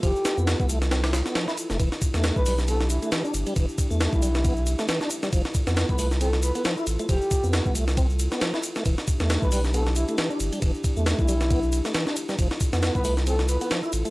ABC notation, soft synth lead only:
X:1
M:4/4
L:1/16
Q:"Swing 16ths" 1/4=136
K:Ephr
V:1 name="Soft synth lead"
G3 z12 z | z4 z B B z A z E E z4 | z4 z E6 z4 z | z4 z B B z A z B B z4 |
G3 z12 z | z4 z B B z A z E E z4 | z4 z E6 z4 z | z4 z B B z A z B B z4 |]